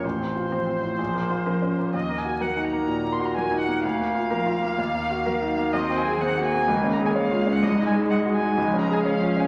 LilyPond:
<<
  \new Staff \with { instrumentName = "Violin" } { \time 4/4 \key ees \dorian \tempo 4 = 126 c''1 | ees''8 aes''8 ges''8 bes''4 c'''16 bes''16 aes''8 ges''8 | f''1 | \key des \major ees''8 aes''8 ges''8 aes''4 bes''16 aes''16 f''8. ges''16 |
ees''8 aes''8 ges''8 aes''4 bes''16 aes''16 f''8. aes''16 | }
  \new Staff \with { instrumentName = "Grand piano" } { \time 4/4 \key ees \dorian \tuplet 3/2 { a,,8 c'8 f'8 c''8 c'8 a,8 bes,,8 bes8 f'8 bes'8 des'8 bes8 } | \tuplet 3/2 { ees,8 bes8 ges'8 bes'8 ees'8 bes8 bes,8 bes8 ges'8 bes'8 ees'8 bes8 } | \tuplet 3/2 { d,8 bes8 f'8 bes'8 f'8 bes8 ees,8 bes8 ges'8 bes'8 ees'8 bes8 } | \key des \major \tuplet 3/2 { ees,8 c'8 aes'8 c''8 ges'8 c'8 des,8 des'8 aes'8 des''8 f'8 des'8 } |
\tuplet 3/2 { c,8 ees'8 aes'8 ees''8 ges'8 ees'8 des,8 des'8 aes'8 des''8 f'8 des'8 } | }
  \new Staff \with { instrumentName = "Viola" } { \time 4/4 \key ees \dorian r4 c'4 r4 des'4 | r4 bes4 r4 bes4 | r4 bes4 r4 bes4 | \key des \major c'4 bes2. |
aes2 aes4 des'4 | }
  \new Staff \with { instrumentName = "Cello" } { \clef bass \time 4/4 \key ees \dorian r4 f4 r4 f4 | r4 ges4 r4 ges4 | r4 f4 r4 ges4 | \key des \major ges4 ees2 aes4~ |
aes2 f4 f4 | }
>>